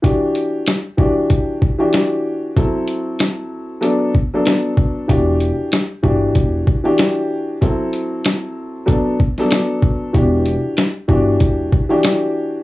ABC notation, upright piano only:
X:1
M:4/4
L:1/16
Q:"Swing 16ths" 1/4=95
K:Em
V:1 name="Upright piano"
[E,DFG]4- [E,DFG] z [E,DFG]4- [E,DFG] [E,DFG]4- [E,DFG] | [F,CEA]8 [F,B,DA]2 z [F,B,DA]4- [F,B,DA] | [E,DFG]4- [E,DFG] z [E,DFG]4- [E,DFG] [E,DFG]4- [E,DFG] | [F,CEA]8 [F,B,DA]2 z [F,B,DA]4- [F,B,DA] |
[E,DFG]4- [E,DFG] z [E,DFG]4- [E,DFG] [E,DFG]4- [E,DFG] |]